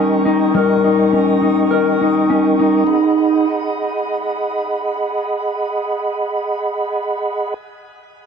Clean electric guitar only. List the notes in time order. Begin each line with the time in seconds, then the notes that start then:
Already playing: G3 C#4 D#4 A#4
0.25 D#4
0.54 G3 A#4
0.84 D#4
1.13 C#4
1.41 D#4
1.71 A#4
2.01 D#4
2.30 C#4
2.59 D#4